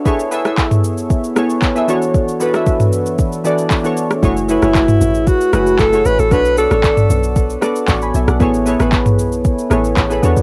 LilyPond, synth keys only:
\new Staff \with { instrumentName = "Synth keys" } { \time 4/4 \key a \major \tempo 4 = 115 << { r1 | r1 | r1 | r2. <a'' cis'''>16 <gis'' b''>16 <e'' gis''>16 <d'' fis''>16~ |
<d'' fis''>16 r2. r8. | } \\ { <b e' gis' a' cis''>8 <b e' gis' a' e''>16 <b e' gis' a' e''>4. r16 <b e' gis' a' cis''>8 r16 <b e' gis' a' e''>16 <e b d' fis' a' cis''>8~ | <e b d' fis' a' cis''>16 r16 <e b d' fis' a' b'>16 <e b d' fis' a' e''>4. r16 <e b d' fis' a' d''>8 r16 <e b d' fis' a' cis''>8 r16 | <a e' fis' gis' cis''>8 <a e' fis' gis' b'>16 <a e' fis' gis' cis''>4. r16 <a e' fis' gis' b'>8 r16 <a e' fis' gis' cis''>8 r16 | <b d' fis' a' cis''>8 <b d' fis' a' d''>16 <b d' fis' a' cis''>4. r16 <b d' fis' a' d''>8 r4 |
<b e' gis' a' cis''>8 <b e' gis' a' cis''>16 <b e' gis' a' b'>4. r16 <b e' gis' a' cis''>8 r16 <b e' gis' a' b'>16 <b d' fis' a' cis''>8 | } >> }